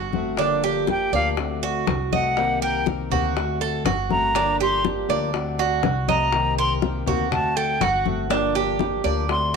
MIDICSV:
0, 0, Header, 1, 7, 480
1, 0, Start_track
1, 0, Key_signature, -2, "minor"
1, 0, Tempo, 495050
1, 372, Time_signature, 4, 2, 24, 8
1, 9271, End_track
2, 0, Start_track
2, 0, Title_t, "Flute"
2, 0, Program_c, 0, 73
2, 879, Note_on_c, 0, 79, 92
2, 1091, Note_off_c, 0, 79, 0
2, 1111, Note_on_c, 0, 77, 101
2, 1251, Note_off_c, 0, 77, 0
2, 2074, Note_on_c, 0, 78, 92
2, 2513, Note_off_c, 0, 78, 0
2, 2549, Note_on_c, 0, 79, 95
2, 2768, Note_off_c, 0, 79, 0
2, 3985, Note_on_c, 0, 82, 99
2, 4430, Note_off_c, 0, 82, 0
2, 4481, Note_on_c, 0, 84, 113
2, 4695, Note_off_c, 0, 84, 0
2, 5905, Note_on_c, 0, 82, 92
2, 6349, Note_off_c, 0, 82, 0
2, 6389, Note_on_c, 0, 84, 111
2, 6530, Note_off_c, 0, 84, 0
2, 7107, Note_on_c, 0, 81, 81
2, 7334, Note_on_c, 0, 79, 89
2, 7348, Note_off_c, 0, 81, 0
2, 7592, Note_on_c, 0, 78, 78
2, 7606, Note_off_c, 0, 79, 0
2, 7824, Note_off_c, 0, 78, 0
2, 9025, Note_on_c, 0, 84, 101
2, 9242, Note_off_c, 0, 84, 0
2, 9271, End_track
3, 0, Start_track
3, 0, Title_t, "Cuban tres"
3, 0, Program_c, 1, 25
3, 0, Note_on_c, 1, 66, 66
3, 358, Note_off_c, 1, 66, 0
3, 374, Note_on_c, 1, 62, 76
3, 607, Note_off_c, 1, 62, 0
3, 617, Note_on_c, 1, 67, 77
3, 1082, Note_off_c, 1, 67, 0
3, 1095, Note_on_c, 1, 74, 65
3, 1562, Note_off_c, 1, 74, 0
3, 1579, Note_on_c, 1, 66, 78
3, 2044, Note_off_c, 1, 66, 0
3, 2062, Note_on_c, 1, 75, 73
3, 2526, Note_off_c, 1, 75, 0
3, 2541, Note_on_c, 1, 70, 79
3, 3006, Note_off_c, 1, 70, 0
3, 3020, Note_on_c, 1, 66, 74
3, 3486, Note_off_c, 1, 66, 0
3, 3501, Note_on_c, 1, 69, 79
3, 3734, Note_off_c, 1, 69, 0
3, 3739, Note_on_c, 1, 66, 68
3, 4205, Note_off_c, 1, 66, 0
3, 4224, Note_on_c, 1, 62, 75
3, 4455, Note_off_c, 1, 62, 0
3, 4465, Note_on_c, 1, 67, 77
3, 4928, Note_off_c, 1, 67, 0
3, 4942, Note_on_c, 1, 74, 71
3, 5407, Note_off_c, 1, 74, 0
3, 5422, Note_on_c, 1, 66, 78
3, 5887, Note_off_c, 1, 66, 0
3, 5901, Note_on_c, 1, 75, 78
3, 6366, Note_off_c, 1, 75, 0
3, 6384, Note_on_c, 1, 70, 75
3, 6847, Note_off_c, 1, 70, 0
3, 6860, Note_on_c, 1, 66, 73
3, 7324, Note_off_c, 1, 66, 0
3, 7337, Note_on_c, 1, 69, 82
3, 7570, Note_off_c, 1, 69, 0
3, 7574, Note_on_c, 1, 66, 67
3, 8040, Note_off_c, 1, 66, 0
3, 8052, Note_on_c, 1, 62, 78
3, 8286, Note_off_c, 1, 62, 0
3, 8293, Note_on_c, 1, 67, 78
3, 8758, Note_off_c, 1, 67, 0
3, 8766, Note_on_c, 1, 74, 68
3, 9234, Note_off_c, 1, 74, 0
3, 9271, End_track
4, 0, Start_track
4, 0, Title_t, "Steel-string acoustic guitar"
4, 0, Program_c, 2, 25
4, 137, Note_on_c, 2, 66, 69
4, 144, Note_on_c, 2, 60, 67
4, 151, Note_on_c, 2, 57, 56
4, 366, Note_off_c, 2, 66, 0
4, 369, Note_off_c, 2, 60, 0
4, 372, Note_off_c, 2, 57, 0
4, 375, Note_on_c, 2, 50, 76
4, 385, Note_on_c, 2, 53, 69
4, 387, Note_on_c, 2, 58, 73
4, 390, Note_on_c, 2, 62, 73
4, 391, Note_on_c, 2, 67, 81
4, 846, Note_off_c, 2, 50, 0
4, 847, Note_off_c, 2, 53, 0
4, 852, Note_off_c, 2, 58, 0
4, 853, Note_off_c, 2, 62, 0
4, 854, Note_off_c, 2, 67, 0
4, 858, Note_on_c, 2, 53, 55
4, 866, Note_on_c, 2, 58, 51
4, 872, Note_on_c, 2, 62, 55
4, 878, Note_on_c, 2, 67, 58
4, 1086, Note_off_c, 2, 67, 0
4, 1087, Note_off_c, 2, 53, 0
4, 1091, Note_off_c, 2, 58, 0
4, 1091, Note_off_c, 2, 62, 0
4, 1098, Note_on_c, 2, 67, 66
4, 1103, Note_on_c, 2, 62, 61
4, 1107, Note_on_c, 2, 58, 64
4, 1114, Note_on_c, 2, 53, 56
4, 1327, Note_off_c, 2, 67, 0
4, 1330, Note_off_c, 2, 62, 0
4, 1331, Note_off_c, 2, 53, 0
4, 1332, Note_off_c, 2, 58, 0
4, 1335, Note_on_c, 2, 50, 55
4, 1345, Note_on_c, 2, 57, 51
4, 1346, Note_on_c, 2, 60, 53
4, 1353, Note_on_c, 2, 66, 59
4, 1807, Note_off_c, 2, 50, 0
4, 1812, Note_off_c, 2, 57, 0
4, 1812, Note_off_c, 2, 60, 0
4, 1816, Note_off_c, 2, 66, 0
4, 2058, Note_on_c, 2, 66, 64
4, 2067, Note_on_c, 2, 60, 60
4, 2073, Note_on_c, 2, 57, 55
4, 2289, Note_off_c, 2, 66, 0
4, 2293, Note_off_c, 2, 60, 0
4, 2296, Note_off_c, 2, 57, 0
4, 2302, Note_on_c, 2, 48, 68
4, 2308, Note_on_c, 2, 51, 77
4, 2312, Note_on_c, 2, 58, 74
4, 2316, Note_on_c, 2, 60, 74
4, 2316, Note_on_c, 2, 67, 74
4, 2771, Note_off_c, 2, 48, 0
4, 2774, Note_off_c, 2, 51, 0
4, 2776, Note_off_c, 2, 58, 0
4, 2778, Note_off_c, 2, 60, 0
4, 2778, Note_off_c, 2, 67, 0
4, 2787, Note_on_c, 2, 51, 52
4, 2794, Note_on_c, 2, 58, 51
4, 2797, Note_on_c, 2, 60, 53
4, 2801, Note_on_c, 2, 67, 56
4, 3014, Note_off_c, 2, 51, 0
4, 3014, Note_off_c, 2, 67, 0
4, 3017, Note_off_c, 2, 58, 0
4, 3018, Note_off_c, 2, 60, 0
4, 3026, Note_on_c, 2, 67, 72
4, 3032, Note_on_c, 2, 60, 66
4, 3033, Note_on_c, 2, 58, 65
4, 3043, Note_on_c, 2, 51, 59
4, 3253, Note_off_c, 2, 67, 0
4, 3256, Note_off_c, 2, 60, 0
4, 3257, Note_off_c, 2, 58, 0
4, 3262, Note_off_c, 2, 51, 0
4, 3266, Note_on_c, 2, 50, 54
4, 3274, Note_on_c, 2, 57, 50
4, 3278, Note_on_c, 2, 60, 56
4, 3285, Note_on_c, 2, 66, 58
4, 3725, Note_off_c, 2, 50, 0
4, 3732, Note_off_c, 2, 60, 0
4, 3733, Note_off_c, 2, 57, 0
4, 3735, Note_off_c, 2, 66, 0
4, 3969, Note_on_c, 2, 66, 65
4, 3979, Note_on_c, 2, 60, 63
4, 3986, Note_on_c, 2, 57, 58
4, 4205, Note_off_c, 2, 66, 0
4, 4210, Note_off_c, 2, 60, 0
4, 4214, Note_off_c, 2, 57, 0
4, 4219, Note_on_c, 2, 50, 65
4, 4220, Note_on_c, 2, 53, 76
4, 4224, Note_on_c, 2, 58, 72
4, 4229, Note_on_c, 2, 62, 77
4, 4233, Note_on_c, 2, 67, 78
4, 4685, Note_off_c, 2, 53, 0
4, 4690, Note_off_c, 2, 50, 0
4, 4693, Note_off_c, 2, 58, 0
4, 4695, Note_off_c, 2, 62, 0
4, 4697, Note_off_c, 2, 67, 0
4, 4697, Note_on_c, 2, 53, 48
4, 4704, Note_on_c, 2, 58, 58
4, 4707, Note_on_c, 2, 62, 55
4, 4712, Note_on_c, 2, 67, 59
4, 4921, Note_off_c, 2, 67, 0
4, 4929, Note_off_c, 2, 53, 0
4, 4930, Note_off_c, 2, 62, 0
4, 4933, Note_off_c, 2, 58, 0
4, 4933, Note_on_c, 2, 67, 75
4, 4941, Note_on_c, 2, 62, 68
4, 4945, Note_on_c, 2, 58, 70
4, 4949, Note_on_c, 2, 53, 61
4, 5167, Note_off_c, 2, 67, 0
4, 5171, Note_off_c, 2, 62, 0
4, 5173, Note_off_c, 2, 53, 0
4, 5173, Note_off_c, 2, 58, 0
4, 5177, Note_on_c, 2, 50, 50
4, 5178, Note_on_c, 2, 57, 56
4, 5185, Note_on_c, 2, 60, 61
4, 5192, Note_on_c, 2, 66, 54
4, 5643, Note_off_c, 2, 50, 0
4, 5646, Note_off_c, 2, 57, 0
4, 5648, Note_off_c, 2, 60, 0
4, 5650, Note_off_c, 2, 66, 0
4, 5898, Note_on_c, 2, 66, 72
4, 5906, Note_on_c, 2, 60, 59
4, 5912, Note_on_c, 2, 57, 56
4, 6129, Note_off_c, 2, 66, 0
4, 6132, Note_on_c, 2, 48, 66
4, 6133, Note_off_c, 2, 60, 0
4, 6136, Note_off_c, 2, 57, 0
4, 6137, Note_on_c, 2, 51, 75
4, 6140, Note_on_c, 2, 58, 71
4, 6148, Note_on_c, 2, 60, 68
4, 6150, Note_on_c, 2, 67, 73
4, 6598, Note_off_c, 2, 51, 0
4, 6602, Note_off_c, 2, 58, 0
4, 6606, Note_off_c, 2, 48, 0
4, 6609, Note_on_c, 2, 51, 50
4, 6610, Note_off_c, 2, 60, 0
4, 6614, Note_on_c, 2, 58, 53
4, 6615, Note_off_c, 2, 67, 0
4, 6621, Note_on_c, 2, 60, 51
4, 6626, Note_on_c, 2, 67, 62
4, 6837, Note_off_c, 2, 67, 0
4, 6839, Note_off_c, 2, 60, 0
4, 6844, Note_off_c, 2, 51, 0
4, 6847, Note_off_c, 2, 58, 0
4, 6849, Note_on_c, 2, 67, 67
4, 6851, Note_on_c, 2, 60, 65
4, 6858, Note_on_c, 2, 58, 64
4, 6862, Note_on_c, 2, 51, 62
4, 7079, Note_off_c, 2, 51, 0
4, 7082, Note_off_c, 2, 60, 0
4, 7083, Note_on_c, 2, 50, 50
4, 7084, Note_off_c, 2, 58, 0
4, 7084, Note_off_c, 2, 67, 0
4, 7088, Note_on_c, 2, 57, 53
4, 7093, Note_on_c, 2, 60, 58
4, 7098, Note_on_c, 2, 66, 57
4, 7552, Note_off_c, 2, 50, 0
4, 7555, Note_off_c, 2, 57, 0
4, 7559, Note_off_c, 2, 60, 0
4, 7559, Note_off_c, 2, 66, 0
4, 7813, Note_on_c, 2, 66, 63
4, 7818, Note_on_c, 2, 60, 59
4, 7826, Note_on_c, 2, 57, 58
4, 8040, Note_on_c, 2, 50, 67
4, 8045, Note_off_c, 2, 66, 0
4, 8045, Note_on_c, 2, 53, 69
4, 8047, Note_off_c, 2, 57, 0
4, 8047, Note_off_c, 2, 60, 0
4, 8051, Note_on_c, 2, 58, 74
4, 8051, Note_on_c, 2, 62, 80
4, 8057, Note_on_c, 2, 67, 72
4, 8517, Note_off_c, 2, 50, 0
4, 8520, Note_off_c, 2, 53, 0
4, 8521, Note_off_c, 2, 58, 0
4, 8523, Note_off_c, 2, 62, 0
4, 8526, Note_off_c, 2, 67, 0
4, 8532, Note_on_c, 2, 53, 51
4, 8532, Note_on_c, 2, 58, 53
4, 8535, Note_on_c, 2, 62, 57
4, 8547, Note_on_c, 2, 67, 59
4, 8755, Note_off_c, 2, 67, 0
4, 8758, Note_off_c, 2, 62, 0
4, 8763, Note_off_c, 2, 53, 0
4, 8763, Note_off_c, 2, 58, 0
4, 8766, Note_on_c, 2, 67, 71
4, 8770, Note_on_c, 2, 62, 68
4, 8774, Note_on_c, 2, 58, 59
4, 8781, Note_on_c, 2, 53, 54
4, 8997, Note_off_c, 2, 53, 0
4, 9000, Note_off_c, 2, 67, 0
4, 9001, Note_on_c, 2, 50, 53
4, 9002, Note_off_c, 2, 62, 0
4, 9004, Note_off_c, 2, 58, 0
4, 9012, Note_on_c, 2, 57, 54
4, 9016, Note_on_c, 2, 60, 52
4, 9017, Note_on_c, 2, 66, 58
4, 9271, Note_off_c, 2, 50, 0
4, 9271, Note_off_c, 2, 57, 0
4, 9271, Note_off_c, 2, 60, 0
4, 9271, Note_off_c, 2, 66, 0
4, 9271, End_track
5, 0, Start_track
5, 0, Title_t, "Upright bass"
5, 0, Program_c, 3, 32
5, 0, Note_on_c, 3, 31, 91
5, 1027, Note_off_c, 3, 31, 0
5, 1088, Note_on_c, 3, 38, 87
5, 1774, Note_off_c, 3, 38, 0
5, 1810, Note_on_c, 3, 36, 96
5, 2953, Note_off_c, 3, 36, 0
5, 3009, Note_on_c, 3, 38, 87
5, 3696, Note_off_c, 3, 38, 0
5, 3729, Note_on_c, 3, 31, 100
5, 4873, Note_off_c, 3, 31, 0
5, 4937, Note_on_c, 3, 38, 93
5, 5620, Note_off_c, 3, 38, 0
5, 5657, Note_on_c, 3, 36, 98
5, 6795, Note_off_c, 3, 36, 0
5, 6853, Note_on_c, 3, 38, 84
5, 7536, Note_off_c, 3, 38, 0
5, 7570, Note_on_c, 3, 31, 93
5, 8707, Note_off_c, 3, 31, 0
5, 8770, Note_on_c, 3, 38, 92
5, 9271, Note_off_c, 3, 38, 0
5, 9271, End_track
6, 0, Start_track
6, 0, Title_t, "Muted steel-string acoustic guitar strokes"
6, 1824, Note_on_c, 9, 29, 56
6, 1921, Note_off_c, 9, 29, 0
6, 3737, Note_on_c, 9, 29, 61
6, 3834, Note_off_c, 9, 29, 0
6, 5655, Note_on_c, 9, 29, 57
6, 5752, Note_off_c, 9, 29, 0
6, 7563, Note_on_c, 9, 29, 62
6, 7660, Note_off_c, 9, 29, 0
6, 9271, End_track
7, 0, Start_track
7, 0, Title_t, "Drums"
7, 123, Note_on_c, 9, 60, 34
7, 128, Note_on_c, 9, 63, 88
7, 220, Note_off_c, 9, 60, 0
7, 225, Note_off_c, 9, 63, 0
7, 362, Note_on_c, 9, 60, 69
7, 376, Note_on_c, 9, 63, 33
7, 459, Note_off_c, 9, 60, 0
7, 473, Note_off_c, 9, 63, 0
7, 608, Note_on_c, 9, 60, 34
7, 619, Note_on_c, 9, 63, 34
7, 705, Note_off_c, 9, 60, 0
7, 716, Note_off_c, 9, 63, 0
7, 847, Note_on_c, 9, 60, 61
7, 856, Note_on_c, 9, 63, 92
7, 944, Note_off_c, 9, 60, 0
7, 953, Note_off_c, 9, 63, 0
7, 1095, Note_on_c, 9, 60, 36
7, 1098, Note_on_c, 9, 63, 33
7, 1192, Note_off_c, 9, 60, 0
7, 1195, Note_off_c, 9, 63, 0
7, 1331, Note_on_c, 9, 60, 69
7, 1337, Note_on_c, 9, 63, 34
7, 1428, Note_off_c, 9, 60, 0
7, 1434, Note_off_c, 9, 63, 0
7, 1576, Note_on_c, 9, 63, 33
7, 1577, Note_on_c, 9, 60, 38
7, 1673, Note_off_c, 9, 63, 0
7, 1674, Note_off_c, 9, 60, 0
7, 1815, Note_on_c, 9, 63, 85
7, 1818, Note_on_c, 9, 60, 69
7, 1818, Note_on_c, 9, 61, 82
7, 1911, Note_off_c, 9, 63, 0
7, 1915, Note_off_c, 9, 60, 0
7, 1915, Note_off_c, 9, 61, 0
7, 2059, Note_on_c, 9, 63, 84
7, 2156, Note_off_c, 9, 63, 0
7, 2298, Note_on_c, 9, 60, 73
7, 2300, Note_on_c, 9, 63, 33
7, 2395, Note_off_c, 9, 60, 0
7, 2397, Note_off_c, 9, 63, 0
7, 2545, Note_on_c, 9, 63, 35
7, 2642, Note_off_c, 9, 63, 0
7, 2776, Note_on_c, 9, 60, 59
7, 2782, Note_on_c, 9, 63, 98
7, 2873, Note_off_c, 9, 60, 0
7, 2879, Note_off_c, 9, 63, 0
7, 3022, Note_on_c, 9, 60, 36
7, 3022, Note_on_c, 9, 63, 35
7, 3022, Note_on_c, 9, 64, 81
7, 3119, Note_off_c, 9, 60, 0
7, 3119, Note_off_c, 9, 63, 0
7, 3119, Note_off_c, 9, 64, 0
7, 3262, Note_on_c, 9, 63, 35
7, 3264, Note_on_c, 9, 60, 69
7, 3359, Note_off_c, 9, 63, 0
7, 3361, Note_off_c, 9, 60, 0
7, 3501, Note_on_c, 9, 60, 35
7, 3504, Note_on_c, 9, 63, 34
7, 3598, Note_off_c, 9, 60, 0
7, 3601, Note_off_c, 9, 63, 0
7, 3739, Note_on_c, 9, 60, 66
7, 3739, Note_on_c, 9, 61, 81
7, 3744, Note_on_c, 9, 63, 91
7, 3836, Note_off_c, 9, 60, 0
7, 3836, Note_off_c, 9, 61, 0
7, 3841, Note_off_c, 9, 63, 0
7, 3980, Note_on_c, 9, 60, 36
7, 3981, Note_on_c, 9, 63, 84
7, 4077, Note_off_c, 9, 60, 0
7, 4078, Note_off_c, 9, 63, 0
7, 4219, Note_on_c, 9, 60, 67
7, 4224, Note_on_c, 9, 63, 32
7, 4316, Note_off_c, 9, 60, 0
7, 4321, Note_off_c, 9, 63, 0
7, 4463, Note_on_c, 9, 60, 34
7, 4465, Note_on_c, 9, 63, 36
7, 4560, Note_off_c, 9, 60, 0
7, 4562, Note_off_c, 9, 63, 0
7, 4698, Note_on_c, 9, 60, 64
7, 4699, Note_on_c, 9, 63, 91
7, 4795, Note_off_c, 9, 60, 0
7, 4796, Note_off_c, 9, 63, 0
7, 4938, Note_on_c, 9, 60, 36
7, 4943, Note_on_c, 9, 63, 34
7, 5035, Note_off_c, 9, 60, 0
7, 5039, Note_off_c, 9, 63, 0
7, 5177, Note_on_c, 9, 60, 72
7, 5180, Note_on_c, 9, 63, 35
7, 5274, Note_off_c, 9, 60, 0
7, 5276, Note_off_c, 9, 63, 0
7, 5416, Note_on_c, 9, 60, 35
7, 5416, Note_on_c, 9, 63, 35
7, 5512, Note_off_c, 9, 60, 0
7, 5513, Note_off_c, 9, 63, 0
7, 5654, Note_on_c, 9, 60, 64
7, 5654, Note_on_c, 9, 61, 77
7, 5659, Note_on_c, 9, 63, 86
7, 5751, Note_off_c, 9, 60, 0
7, 5751, Note_off_c, 9, 61, 0
7, 5756, Note_off_c, 9, 63, 0
7, 5897, Note_on_c, 9, 63, 82
7, 5994, Note_off_c, 9, 63, 0
7, 6132, Note_on_c, 9, 60, 73
7, 6139, Note_on_c, 9, 63, 35
7, 6229, Note_off_c, 9, 60, 0
7, 6236, Note_off_c, 9, 63, 0
7, 6379, Note_on_c, 9, 63, 35
7, 6476, Note_off_c, 9, 63, 0
7, 6615, Note_on_c, 9, 60, 60
7, 6615, Note_on_c, 9, 63, 97
7, 6712, Note_off_c, 9, 60, 0
7, 6712, Note_off_c, 9, 63, 0
7, 6857, Note_on_c, 9, 60, 36
7, 6857, Note_on_c, 9, 63, 35
7, 6857, Note_on_c, 9, 64, 87
7, 6954, Note_off_c, 9, 60, 0
7, 6954, Note_off_c, 9, 63, 0
7, 6954, Note_off_c, 9, 64, 0
7, 7095, Note_on_c, 9, 63, 36
7, 7095, Note_on_c, 9, 64, 76
7, 7097, Note_on_c, 9, 60, 68
7, 7192, Note_off_c, 9, 63, 0
7, 7192, Note_off_c, 9, 64, 0
7, 7194, Note_off_c, 9, 60, 0
7, 7333, Note_on_c, 9, 63, 35
7, 7337, Note_on_c, 9, 60, 37
7, 7430, Note_off_c, 9, 63, 0
7, 7434, Note_off_c, 9, 60, 0
7, 7572, Note_on_c, 9, 63, 81
7, 7575, Note_on_c, 9, 60, 64
7, 7575, Note_on_c, 9, 61, 81
7, 7669, Note_off_c, 9, 63, 0
7, 7672, Note_off_c, 9, 60, 0
7, 7672, Note_off_c, 9, 61, 0
7, 7812, Note_on_c, 9, 63, 79
7, 7817, Note_on_c, 9, 60, 35
7, 7909, Note_off_c, 9, 63, 0
7, 7914, Note_off_c, 9, 60, 0
7, 8054, Note_on_c, 9, 60, 75
7, 8151, Note_off_c, 9, 60, 0
7, 8289, Note_on_c, 9, 60, 35
7, 8298, Note_on_c, 9, 63, 34
7, 8386, Note_off_c, 9, 60, 0
7, 8395, Note_off_c, 9, 63, 0
7, 8526, Note_on_c, 9, 63, 91
7, 8536, Note_on_c, 9, 60, 61
7, 8623, Note_off_c, 9, 63, 0
7, 8633, Note_off_c, 9, 60, 0
7, 8768, Note_on_c, 9, 63, 35
7, 8776, Note_on_c, 9, 60, 36
7, 8865, Note_off_c, 9, 63, 0
7, 8873, Note_off_c, 9, 60, 0
7, 9009, Note_on_c, 9, 63, 37
7, 9010, Note_on_c, 9, 60, 70
7, 9106, Note_off_c, 9, 63, 0
7, 9107, Note_off_c, 9, 60, 0
7, 9271, End_track
0, 0, End_of_file